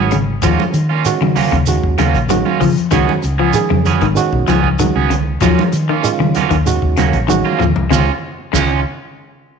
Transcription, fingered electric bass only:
0.00 0.37 G#1 medium
0.42 0.57 D#2 medium
0.74 1.16 D#3 medium
1.21 1.35 D#3 medium
1.53 1.80 D#2 medium
1.83 1.97 D#2 medium
1.99 2.13 D#2 medium
2.15 2.42 A#1 medium
2.60 2.75 C#3 medium
2.78 muted fingered electric bass stroke soft
2.92 3.06 C#2 loud
3.24 3.51 C#2 medium
3.71 3.98 F2 medium
4.02 4.15 G#1 medium
4.17 muted fingered electric bass stroke soft
4.33 4.46 B1 medium
4.48 4.90 C#2 medium
4.96 5.37 C#2 medium
5.41 5.56 D#2 medium
5.73 6.15 D#3 medium
6.20 6.33 D#3 medium
6.51 6.79 D#2 medium
6.82 6.96 D#2 medium
6.99 7.13 D#2 medium
7.13 7.41 A#1 medium
7.61 7.75 D#2 medium
7.77 7.90 C#2 medium
7.91 8.09 C#2 loud
8.54 8.83 C#2 medium

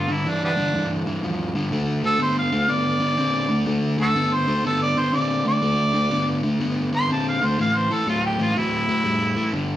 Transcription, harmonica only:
0.00 0.14 F4 medium
0.12 0.30 E4 medium
0.28 0.43 D4 loud
0.44 0.51 G3 medium
0.44 0.52 B3 medium
0.44 0.91 D4 loud
2.06 2.21 A4 loud
2.22 2.37 C5 loud
2.39 2.73 F5 loud
2.71 3.65 D5 loud
4.01 4.08 E4 medium
4.01 4.09 F#4 medium
4.01 4.35 A4 loud
4.33 4.64 C5 loud
4.66 4.81 A4 loud
4.82 5.00 D5 loud
4.99 5.17 C5 loud
5.16 5.46 D5 medium
5.48 6.42 D5 loud
6.96 7.10 C6 loud
7.12 7.27 A5 medium
7.29 7.47 F5 medium
7.45 7.59 C5 medium
7.61 7.79 F5 medium
7.77 7.94 C5 medium
7.93 8.08 A4 medium
8.09 8.24 F4 loud
8.26 8.40 G4 medium
8.42 8.57 F4 loud
8.58 9.52 E4 loud

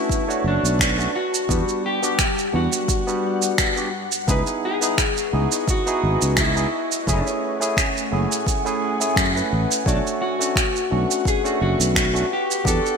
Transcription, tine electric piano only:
0.00 0.23 A3 medium
0.00 0.24 C#4 medium
0.00 0.24 D4 medium
0.00 0.24 F#4 medium
0.28 0.93 A3 medium
0.28 0.94 D4 medium
0.28 0.94 F#4 medium
0.28 0.94 C#5 medium
0.98 1.09 A3 medium
0.98 1.09 C#4 medium
0.98 1.09 D4 medium
0.98 1.10 F#4 medium
1.49 1.99 G3 loud
1.49 1.98 B3 medium
1.49 1.98 D4 medium
1.49 1.99 F#4 medium
2.02 2.20 B3 medium
2.02 2.20 D4 medium
2.02 2.21 F#4 medium
2.02 2.21 G4 medium
2.53 3.03 G3 medium
2.53 3.03 B3 medium
2.53 3.03 D4 medium
2.53 3.03 F#4 medium
3.07 3.73 G3 loud
3.07 3.73 B3 medium
3.07 3.73 D4 medium
3.07 3.73 F#4 medium
3.76 3.87 B3 medium
3.76 3.88 D4 medium
3.76 3.88 F#4 medium
3.76 3.89 G4 medium
4.27 4.77 B3 medium
4.27 4.77 D#4 medium
4.27 4.78 E4 medium
4.27 4.78 G#4 loud
4.81 4.99 B3 medium
4.81 4.99 D#4 medium
4.81 5.00 E4 medium
4.81 5.00 G#4 medium
5.32 5.82 B3 medium
5.32 5.82 D#4 medium
5.32 5.82 E4 medium
5.32 5.83 G#4 medium
5.86 6.52 B3 medium
5.86 6.52 D#4 medium
5.86 6.52 E4 medium
5.86 6.53 G#4 loud
6.55 6.66 B3 medium
6.55 6.67 D#4 medium
6.55 6.67 E4 medium
6.55 6.67 G#4 medium
7.07 7.56 A3 medium
7.07 7.57 C#4 medium
7.07 7.57 E4 medium
7.07 7.57 G#4 loud
7.60 7.78 A3 medium
7.60 7.78 C#4 medium
7.60 7.79 E4 medium
7.60 7.79 G#4 medium
8.11 8.61 A3 medium
8.11 8.61 C#4 medium
8.11 8.62 E4 medium
8.11 8.62 G#4 medium
8.65 8.96 A3 medium
8.65 8.97 C#4 medium
8.65 8.97 E4 medium
8.65 8.97 G#4 loud
9.00 9.31 A3 medium
9.00 9.31 C#4 medium
9.00 9.31 E4 medium
9.00 9.31 G#4 medium
9.34 9.82 A3 medium
9.34 9.83 C#4 medium
9.34 9.83 E4 medium
9.34 9.83 B4 medium
9.86 10.35 A3 medium
9.86 10.36 D4 medium
9.86 10.36 F#4 loud
9.86 10.35 C#5 medium
10.39 10.57 A3 medium
10.39 10.57 C#4 medium
10.39 10.58 D4 medium
10.39 10.58 F#4 medium
10.91 11.40 A3 medium
10.91 11.40 C#4 medium
10.91 11.40 D4 medium
10.91 11.41 F#4 medium
11.44 12.10 A3 medium
11.44 12.10 C#4 medium
11.44 12.10 D4 medium
11.44 12.11 F#4 medium
12.13 12.25 A3 medium
12.13 12.25 C#4 medium
12.13 12.25 D4 medium
12.13 12.26 F#4 medium
12.64 12.97 B3 medium
12.64 12.97 D4 medium
12.64 12.97 F#4 medium
12.64 12.97 G4 loud

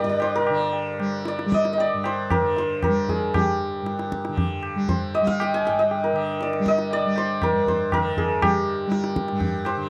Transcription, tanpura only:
0.00 1.93 G2 medium
0.00 0.50 D3 medium
0.00 0.99 G3 medium
0.50 2.40 D3 medium
0.99 1.46 G3 medium
1.46 2.87 G3 medium
1.94 3.82 G2 medium
2.41 4.28 D3 medium
2.87 3.35 G3 medium
3.35 4.75 G3 medium
3.82 5.68 G2 medium
4.29 6.12 D3 medium
4.75 5.21 G3 medium
5.21 6.59 G3 medium
5.68 7.51 G2 medium
6.13 7.97 D3 medium
6.59 7.05 G3 medium
7.05 8.42 G3 medium
7.52 9.31 G2 medium
7.97 9.77 D3 medium
8.42 8.87 G3 medium
8.87 9.89 G3 medium
9.32 9.89 G2 medium
9.77 9.89 D3 medium

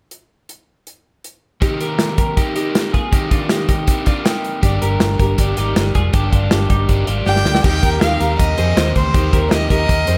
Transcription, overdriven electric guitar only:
1.61 2.37 C3 medium
1.61 2.37 D#3 medium
1.61 2.37 A#3 medium
1.61 2.36 C4 medium
1.61 2.38 G4 medium
1.61 2.38 A#4 medium
2.37 2.55 A#3 medium
2.37 2.56 C4 medium
2.37 2.54 G4 medium
2.37 2.55 A#4 medium
2.55 3.13 A#3 soft
2.55 3.12 C4 soft
2.55 3.14 G4 soft
2.55 3.14 A#4 soft
3.11 3.88 C3 medium
3.11 3.87 D#3 medium
3.11 3.87 A#3 medium
3.11 3.85 C4 medium
3.11 3.88 G4 medium
3.11 3.88 A#4 medium
3.87 4.06 A#3 medium
3.87 4.06 C4 medium
3.87 4.04 G4 medium
3.87 4.05 A#4 medium
4.05 4.63 A#3 soft
4.05 4.62 C4 soft
4.05 4.63 G4 soft
4.05 4.64 A#4 soft
4.62 6.12 G3 medium
4.62 5.36 D4 medium
4.62 5.38 G4 medium
4.62 5.39 A#4 medium
4.62 5.39 D5 medium
5.38 5.57 D4 medium
5.38 5.57 G4 medium
5.38 5.56 A#4 medium
5.38 5.55 D5 medium
5.56 6.14 G4 soft
5.56 6.15 A#4 soft
5.56 6.13 D5 soft
6.13 8.76 G3 medium
6.13 6.87 D4 medium
6.13 6.89 G4 medium
6.13 6.90 A#4 medium
6.13 6.89 D5 medium
6.89 7.08 D4 medium
6.89 7.08 G4 medium
6.89 7.07 A#4 medium
6.89 7.06 D5 medium
7.07 7.64 G4 soft
7.07 7.64 A#4 soft
7.07 7.64 D5 soft
7.63 8.01 A#3 medium
7.63 8.00 C4 soft
7.63 8.02 G4 medium
7.63 8.02 A#4 medium
8.01 8.29 A#3 medium
8.01 8.29 C4 medium
8.01 8.28 G4 medium
8.01 8.29 A#4 medium
8.29 8.57 A#3 soft
8.29 8.56 C4 soft
8.29 8.58 G4 soft
8.29 8.58 A#4 soft
8.57 8.76 A#3 medium
8.57 8.75 C4 medium
8.57 8.76 G4 medium
8.57 8.76 A#4 medium
8.76 9.14 C3 medium
8.76 9.14 D#3 medium
8.76 9.14 A#3 medium
8.76 9.12 C4 medium
8.76 9.15 G4 medium
8.76 9.15 A#4 medium
9.14 9.52 A#3 medium
9.14 9.50 C4 soft
9.14 9.53 G4 medium
9.14 9.52 A#4 medium
9.51 9.80 A#3 medium
9.51 9.80 C4 medium
9.51 9.78 G4 medium
9.51 9.79 A#4 medium
9.79 10.07 A#3 soft
9.79 10.06 C4 soft
9.79 10.08 G4 soft
9.79 10.07 A#4 soft
10.07 10.18 A#3 medium
10.07 10.18 C4 soft
10.07 10.18 G4 medium
10.07 10.18 A#4 medium

